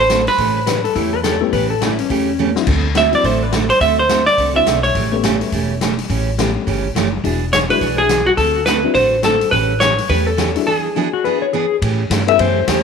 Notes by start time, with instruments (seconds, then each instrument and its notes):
Already playing: upright bass A1
0.00 hollow-body jazz guitar C5
0.10 steel-string acoustic guitar D3 A3 C4 F#4 A4, snare, closed hi-hat
0.27 hollow-body jazz guitar B4, open hi-hat
0.38 upright bass A1, steel-string acoustic guitar C#3 E3 A3 C#4 G4, kick, open hi-hat
0.66 steel-string acoustic guitar C#3 E3 A3 C#4 G4, electric slide guitar B4, snare, closed hi-hat
0.84 electric slide guitar A4, open hi-hat
0.95 upright bass E2, steel-string acoustic guitar C#3 E3 A3 C#4 G4, electric slide guitar E4, kick, open hi-hat
1.13 electric slide guitar B4
1.23 steel-string acoustic guitar C#3 E3 A3 C#4 G4, electric slide guitar A4, snare, closed hi-hat
1.41 honky-tonk piano A3 B3 C#4 G4, electric slide guitar E4
1.53 upright bass A1, steel-string acoustic guitar C#3 E3 A3 C#4 G4, electric slide guitar B4, kick, open hi-hat
1.70 electric slide guitar A4
1.81 steel-string acoustic guitar C#3 E3 A3 C#4 G4, electric slide guitar E4, snare, closed hi-hat
1.99 electric slide guitar C#4, open hi-hat
2.10 upright bass E2, steel-string acoustic guitar C#3 E3 A3 C#4 G4, kick, open hi-hat
2.39 steel-string acoustic guitar C#3 E3 A3 C#4 G4
2.55 honky-tonk piano F#3 C4 D4 E4, snare
2.67 upright bass D2, steel-string acoustic guitar D3 A3 C4 F#4 A4, kick, crash
2.95 steel-string acoustic guitar D3 A3 C4 F#4 A4, hollow-body jazz guitar E5, snare, closed hi-hat
3.11 honky-tonk piano F#3 C4 D4 E4, open hi-hat
3.15 hollow-body jazz guitar D5
3.24 upright bass A1, steel-string acoustic guitar D3 A3 C4 F#4 A4, hollow-body jazz guitar C5, kick, open hi-hat
3.43 hollow-body jazz guitar B4
3.52 steel-string acoustic guitar D3 A3 C4 F#4 A4, snare, closed hi-hat
3.70 hollow-body jazz guitar C5, open hi-hat
3.80 upright bass D2, steel-string acoustic guitar D3 A3 C4 F#4 A4, hollow-body jazz guitar E5, kick, open hi-hat
3.99 hollow-body jazz guitar C5
4.09 steel-string acoustic guitar D3 A3 C4 F#4 A4, snare, closed hi-hat
4.26 hollow-body jazz guitar D5, open hi-hat
4.38 upright bass C2, steel-string acoustic guitar D3 A3 C4 F#4 A4, kick, open hi-hat
4.54 honky-tonk piano F#3 C4 D4 E4, hollow-body jazz guitar E5
4.66 upright bass B1, steel-string acoustic guitar D3 A3 C4 F#4 A4, snare, closed hi-hat
4.83 hollow-body jazz guitar C#5, open hi-hat
4.95 upright bass A1, steel-string acoustic guitar C#3 E3 A3 C#4 G4, kick, open hi-hat
5.12 honky-tonk piano A3 B3 C#4 G4
5.24 steel-string acoustic guitar C#3 E3 A3 C#4 G4, snare, closed hi-hat
5.41 open hi-hat
5.52 upright bass E1, steel-string acoustic guitar C#3 E3 A3 C#4 G4, kick, open hi-hat
5.81 steel-string acoustic guitar C#3 E3 A3 C#4 G4, snare, closed hi-hat
5.99 open hi-hat
6.09 upright bass A1, steel-string acoustic guitar C#3 E3 A3 C#4 G4, kick, open hi-hat
6.38 steel-string acoustic guitar C#3 E3 A3 C#4 G4, honky-tonk piano A3 B3 C#4 G4, snare, closed hi-hat
6.67 upright bass G1, steel-string acoustic guitar C#3 E3 A3 C#4 G4, kick, open hi-hat
6.95 upright bass F#1, steel-string acoustic guitar C#3 E3 A3 C#4 G4, snare, closed hi-hat
7.24 upright bass E1, steel-string acoustic guitar E3 B3 D4 G#4, honky-tonk piano G#3 D4 E4 F#4, kick, open hi-hat
7.53 steel-string acoustic guitar E3 B3 D4 G#4, hollow-body jazz guitar C#5, snare, closed hi-hat
7.69 honky-tonk piano G#3 D4 E4 F#4, hollow-body jazz guitar B4, open hi-hat
7.81 upright bass B1, steel-string acoustic guitar E3 B3 D4 G#4, kick, open hi-hat
7.98 hollow-body jazz guitar G#4
8.09 steel-string acoustic guitar E3 B3 D4 G#4, snare, closed hi-hat
8.26 hollow-body jazz guitar F#4
8.37 upright bass D2, steel-string acoustic guitar D3 A3 C4 F#4 A4, hollow-body jazz guitar A4, kick, open hi-hat
8.66 steel-string acoustic guitar D3 A3 C4 F#4 A4, hollow-body jazz guitar B4, snare, closed hi-hat
8.83 honky-tonk piano C4 D4 E4 F#4
8.95 upright bass A1, steel-string acoustic guitar D3 A3 C4 F#4 A4, hollow-body jazz guitar C5, kick, open hi-hat
9.23 steel-string acoustic guitar D3 A3 C4 F#4 A4, hollow-body jazz guitar A4, snare, closed hi-hat
9.41 open hi-hat
9.51 upright bass A1, steel-string acoustic guitar C#3 E3 A3 C#4 G4, hollow-body jazz guitar B4, kick, open hi-hat
9.80 steel-string acoustic guitar C#3 E3 A3 C#4 G4, hollow-body jazz guitar C#5, snare, closed hi-hat
9.98 open hi-hat
10.09 upright bass E2, steel-string acoustic guitar C#3 E3 A3 C#4 G4, hollow-body jazz guitar B4, kick, open hi-hat
10.27 hollow-body jazz guitar A4
10.37 steel-string acoustic guitar C#3 E3 A3 C#4 G4, snare, closed hi-hat
10.56 honky-tonk piano D4 E4 F#4 G#4, open hi-hat
10.67 steel-string acoustic guitar E3 B3 D4 G#4, hollow-body jazz guitar G#4
10.95 steel-string acoustic guitar E3 B3 D4 G#4, honky-tonk piano D4 E4 F#4 G#4
11.13 electric slide guitar F#4
11.24 steel-string acoustic guitar E3 B3 D4 G#4, electric slide guitar B4
11.42 electric slide guitar C#5
11.53 steel-string acoustic guitar E3 B3 D4 G#4, electric slide guitar G#4
11.82 upright bass A2, steel-string acoustic guitar C#3 E3 A3 C#4 G4, kick, ride
12.10 upright bass G2, steel-string acoustic guitar C#3 E3 A3 C#4 G4, kick, snare, hi-hat pedal, ride
12.27 honky-tonk piano B3 C#4 E4 G4 A4, electric slide guitar E5, ride
12.39 upright bass F#2, steel-string acoustic guitar C#3 E3 A3 C#4 G4, electric slide guitar C5, kick, ride
12.68 upright bass E2, steel-string acoustic guitar C#3 E3 A3 C#4 G4, kick, snare, hi-hat pedal, ride